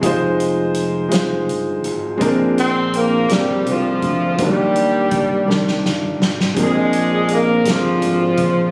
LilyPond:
<<
  \new Staff \with { instrumentName = "Grand piano" } { \time 6/8 \key bes \mixolydian \tempo 4. = 55 <aes ees' f' c''>4. <aes ees' f' c''>4. | <bes, aes c' d' bes'>4. <bes c' d' a' bes'>4. | <ees ges g d' g' bes'>4. <ees g d' g'>4. | <bes, aes c' d' bes'>4. <aes c' d' a' bes'>4. | }
  \new Staff \with { instrumentName = "Horn section" } { \time 6/8 \key bes \mixolydian << { r2. | r8 <c' c''>8 <bes bes'>8 <g g'>8 <f f'>4 | <g g'>2 r4 | <aes aes'>4 <bes bes'>8 <f f'>4. | } \\ { r2. | r2 <aes d'>4 | <bes d'>2 r4 | <c' d'>4. <aes d'>4. | } >> }
  \new Staff \with { instrumentName = "Tenor saxophone" } { \clef bass \time 6/8 \key bes \mixolydian r2. | r8 c'8 bes8 g8 f4 | g2 r4 | aes4 bes8 f4. | }
  \new Staff \with { instrumentName = "Fingered electric bass" } { \clef bass \time 6/8 \key bes \mixolydian f,,4. f,,8 g,,8 aes,,8 | bes,,4. g,,8 c,8 d,8 | ees,4. c,8 g,,8 aes,,8 | bes,,4. g,,8 aes,,8 bes,,8 | }
  \new DrumStaff \with { instrumentName = "Drums" } \drummode { \time 6/8 <hh bd>8 hh8 hh8 <hh sn>8 hh8 hh8 | <hh bd>8 hh8 hh8 <hh sn>8 hh8 <hh bd>8 | <hh bd>8 hh8 <hh bd>8 sn16 sn16 sn8 sn16 sn16 | <hh bd>8 hh8 hh8 <hh sn>8 hh8 <hh bd>8 | }
>>